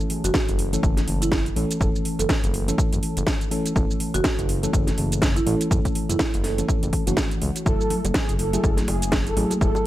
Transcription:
Already playing: E3 A3 C#4 A4
0.00 shaker
0.10 open hi-hat
0.24 F#1 F#4, closed hi-hat, shaker
0.34 kick, snare, shaker
0.49 F#1, closed hi-hat, shaker
0.59 open hi-hat
0.73 E3 A3 C#4 A4, closed hi-hat, shaker
0.83 F#1 E3 A3 C#4 A4, kick, shaker
0.97 snare, closed hi-hat, shaker
1.07 F#1, open hi-hat
1.22 E4, closed hi-hat, shaker
1.32 kick, snare, shaker
1.46 closed hi-hat, shaker
1.56 A1 E3 A3 C#4 A4, open hi-hat
1.71 closed hi-hat, shaker
1.80 F#1 E3 A3 C#4 A4, kick, shaker
1.96 shaker
2.05 open hi-hat
2.19 F#1 A4, closed hi-hat, shaker
2.29 kick, snare, shaker
2.44 F#1, closed hi-hat, shaker
2.54 open hi-hat
2.68 E3 A3 C#4 A4, closed hi-hat, shaker
2.78 E3 A3 C#4 A4, kick, shaker
2.93 F#1, closed hi-hat, shaker
3.03 open hi-hat
3.17 F#1, closed hi-hat, shaker
3.27 kick, snare, shaker
3.41 closed hi-hat, shaker
3.51 E3 A3 C#4 A4, open hi-hat
3.66 closed hi-hat, shaker
3.75 F#1 E3 A3 C#4 A4, kick, shaker
3.91 shaker
4.00 open hi-hat
4.14 F#1 F#4, closed hi-hat, shaker
4.24 kick, snare, shaker
4.39 F#1, closed hi-hat, shaker
4.49 open hi-hat
4.63 E3 A3 C#4 A4, closed hi-hat, shaker
4.73 F#1 E3 A3 A4, kick, shaker
4.87 snare, closed hi-hat, shaker
4.98 F#1, open hi-hat
5.12 closed hi-hat, shaker
5.22 kick, snare, shaker
5.36 E4, closed hi-hat, shaker
5.46 A1 E3 A3 C#4 A4, open hi-hat
5.61 closed hi-hat, shaker
5.70 F#1 E3 A3 C#4 A4, kick, shaker
5.85 kick, closed hi-hat, shaker
5.95 open hi-hat
6.09 F#1 E4, closed hi-hat, shaker
6.19 kick, snare, shaker
6.34 F#1, closed hi-hat, shaker
6.44 A4, snare, open hi-hat
6.58 E3 A3 C#4 A4, closed hi-hat, shaker
6.68 A3, kick, shaker
6.83 F#1, closed hi-hat, shaker
6.93 kick, open hi-hat
7.07 F#1 E3 A3 C#4 F#4, closed hi-hat, shaker
7.17 kick, snare, shaker
7.31 closed hi-hat, shaker
7.42 C#2, open hi-hat
7.56 closed hi-hat, shaker
7.66 F#1 F#3 A3 E4 A4, kick, high bongo, shaker
7.81 shaker
7.90 open hi-hat, low conga
8.05 F#1, closed hi-hat, high bongo, high conga, shaker
8.14 G#4, kick, snare, shaker
8.29 F#1, closed hi-hat, shaker
8.39 A4, open hi-hat, high conga
8.53 F#3 A3 E4 G#4, closed hi-hat, high bongo, shaker
8.63 F#1 F#3 A3 E4 G#4, kick, shaker
8.77 snare, closed hi-hat, high conga, shaker
8.88 F#1 G#4, open hi-hat, high bongo
9.02 closed hi-hat, shaker
9.12 kick, snare, high conga, shaker
9.27 A4, closed hi-hat, shaker
9.36 A1 F#3 A3 E4 G#4, open hi-hat, high bongo
9.50 closed hi-hat, high conga, shaker
9.61 F#1 F#3 A3 E4 G#4 A4, kick, shaker
9.75 high bongo, shaker

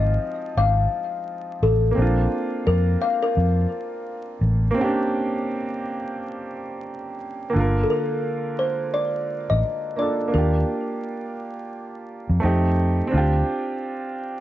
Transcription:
Already playing: G#1 F3 C4 D#4 F4 D#5
0.57 G#1 F5
1.63 A1 A4
1.91 A#3 C4
1.97 A#1 D4
2.02 F4
2.67 F2 A#4
3.02 F5
3.22 A#4
3.37 F2
4.41 A1
4.71 A#3 C4
4.78 C#4 G4
4.84 D4
7.49 D3 A#3
7.55 G1 F4
7.60 A#4
7.83 A4
7.90 A#4
8.59 C5
8.94 D5
9.50 A1 D#5
9.96 A#3 D4 F4 D5
10.02 A4
10.28 A#3 D4
10.34 D#2 F4 A#4
10.38 G4
12.29 F2
12.40 F2 A3 C4 D#4
12.45 G4
13.07 C4 D4
13.14 D2 F4
13.18 G4

